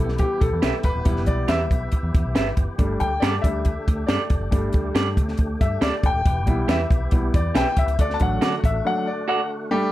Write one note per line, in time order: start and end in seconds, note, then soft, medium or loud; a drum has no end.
0.00 0.22 B1 medium
0.00 2.76 E3 medium
0.00 1.03 G3 medium
0.00 1.04 B3 medium
0.00 2.76 B3 medium
0.00 1.05 E4 medium
0.00 6.22 G4 medium
0.00 0.20 A4 medium
0.09 snare soft
0.18 0.42 G4 medium
0.18 kick medium
0.18 closed hi-hat medium
0.41 0.49 B1 medium
0.41 0.85 A4 medium
0.41 kick loud
0.41 closed hi-hat medium
0.52 0.60 E2 medium
0.62 0.70 B1 loud
0.62 0.74 G4 medium
0.62 0.75 B4 medium
0.62 0.75 E5 medium
0.62 snare loud
0.62 closed hi-hat medium
0.83 0.92 E1 medium
0.83 1.29 B4 medium
0.83 kick medium
0.83 closed hi-hat medium
0.95 1.03 D#1 medium
1.05 1.28 E1 loud
1.05 1.67 G3 medium
1.05 1.67 B3 medium
1.05 1.68 E4 medium
1.05 kick loud
1.05 closed hi-hat medium
1.16 snare soft
1.26 1.44 B1 medium
1.26 1.49 D5 medium
1.26 kick medium
1.26 closed hi-hat medium
1.48 1.71 E2 loud
1.48 1.61 G4 loud
1.48 1.61 B4 medium
1.48 2.53 E5 loud
1.48 1.61 E5 loud
1.48 snare loud
1.48 closed hi-hat medium
1.71 1.87 B1 medium
1.71 kick medium
1.71 closed hi-hat medium
1.92 kick medium
1.92 closed hi-hat medium
2.03 2.11 E2 loud
2.14 2.22 E2 medium
2.14 kick loud
2.14 closed hi-hat medium
2.25 2.33 B1 medium
2.35 2.52 G1 medium
2.35 2.47 G4 medium
2.35 2.48 B4 medium
2.35 2.48 E5 medium
2.35 snare loud
2.35 closed hi-hat medium
2.57 2.65 F#1 medium
2.57 kick medium
2.57 closed hi-hat medium
2.78 2.95 G1 loud
2.78 6.22 D3 medium
2.78 3.07 G3 medium
2.78 6.22 A3 medium
2.78 3.08 A3 soft
2.78 3.08 D4 medium
2.78 kick loud
2.78 closed hi-hat medium
3.00 3.17 D2 medium
3.00 3.21 G5 loud
3.00 kick medium
3.00 closed hi-hat medium
3.20 3.38 G2 loud
3.20 3.34 G4 medium
3.20 3.35 A4 loud
3.20 3.44 D5 medium
3.20 3.35 D5 loud
3.20 snare loud
3.20 closed hi-hat medium
3.42 3.76 D2 loud
3.42 3.63 G3 soft
3.42 3.64 A3 soft
3.42 3.64 D4 medium
3.42 4.04 E5 medium
3.42 kick medium
3.42 closed hi-hat medium
3.65 kick medium
3.65 closed hi-hat medium
3.88 4.03 D2 medium
3.88 kick loud
3.88 closed hi-hat medium
4.07 4.17 G2 medium
4.07 4.21 G4 medium
4.07 4.21 A4 medium
4.07 4.48 D5 medium
4.07 4.21 D5 loud
4.07 snare loud
4.07 closed hi-hat medium
4.30 4.38 F1 medium
4.30 kick loud
4.30 closed hi-hat medium
4.40 4.49 F#1 medium
4.51 4.68 G1 loud
4.51 5.13 G3 medium
4.51 5.14 A3 medium
4.51 5.14 D4 medium
4.51 kick loud
4.51 closed hi-hat medium
4.73 4.90 D2 medium
4.73 kick medium
4.73 closed hi-hat medium
4.95 5.18 G2 loud
4.95 5.07 G4 medium
4.95 5.07 A4 medium
4.95 5.08 D5 medium
4.95 snare loud
4.95 closed hi-hat medium
5.17 5.33 D2 medium
5.17 kick medium
5.17 closed hi-hat medium
5.28 snare soft
5.37 5.55 D2 medium
5.37 kick medium
5.37 closed hi-hat medium
5.61 5.77 G2 medium
5.61 5.83 E5 medium
5.61 kick loud
5.61 closed hi-hat medium
5.81 5.90 D2 loud
5.81 5.94 G4 medium
5.81 5.94 A4 medium
5.81 5.94 D5 loud
5.81 6.05 D5 medium
5.81 snare loud
5.81 closed hi-hat medium
6.03 6.11 E1 medium
6.03 6.72 G5 loud
6.03 kick loud
6.03 closed hi-hat medium
6.14 6.22 D#1 medium
6.25 6.47 E1 loud
6.25 7.97 E3 medium
6.25 7.97 B3 medium
6.25 7.97 G4 medium
6.25 kick loud
6.25 closed hi-hat medium
6.46 6.63 B1 medium
6.46 6.76 G3 medium
6.46 6.76 B3 medium
6.46 6.77 E4 medium
6.46 kick medium
6.46 closed hi-hat medium
6.68 6.84 E2 loud
6.68 6.80 G4 medium
6.68 6.81 B4 medium
6.68 6.81 E5 medium
6.68 7.10 E5 medium
6.68 snare loud
6.68 closed hi-hat medium
6.90 7.06 B1 medium
6.90 kick loud
6.90 closed hi-hat medium
7.11 7.28 B1 medium
7.11 7.32 G3 medium
7.11 7.32 B3 soft
7.11 7.32 E4 medium
7.11 kick medium
7.11 closed hi-hat medium
7.34 7.50 E2 loud
7.34 7.55 D5 medium
7.34 kick loud
7.34 closed hi-hat medium
7.55 7.63 B1 loud
7.55 7.67 G4 medium
7.55 7.67 B4 loud
7.55 7.67 E5 medium
7.55 7.78 G5 loud
7.55 snare loud
7.55 closed hi-hat medium
7.77 7.85 C2 medium
7.77 8.00 E5 loud
7.77 kick medium
7.77 closed hi-hat medium
7.87 7.95 C#2 medium
7.87 closed hi-hat medium
7.99 8.15 D2 loud
7.99 9.70 D3 medium
7.99 9.70 A3 medium
7.99 9.70 F#4 medium
7.99 8.15 D5 loud
7.99 kick medium
7.99 closed hi-hat medium
8.10 8.20 A5 medium
8.10 snare soft
8.20 8.36 A1 medium
8.20 8.49 F#3 medium
8.20 8.49 A3 medium
8.20 8.49 D4 medium
8.20 8.66 F#5 loud
8.20 kick medium
8.20 closed hi-hat medium
8.41 8.58 D3 loud
8.41 8.54 F#4 medium
8.41 8.54 A4 medium
8.41 8.54 D5 medium
8.41 snare loud
8.41 closed hi-hat medium
8.64 8.79 A1 medium
8.64 8.87 E5 medium
8.64 kick loud
8.64 closed hi-hat medium
8.85 9.04 F#3 medium
8.85 9.04 A3 soft
8.85 9.05 D4 medium
8.85 9.08 F#5 loud
9.07 9.27 D5 medium
9.28 9.40 F#4 medium
9.28 9.40 A4 medium
9.28 9.41 D5 medium
9.28 9.49 F#5 medium
9.71 9.92 G3 medium
9.71 9.92 A3 medium
9.71 9.92 D4 medium
9.71 9.92 G4 loud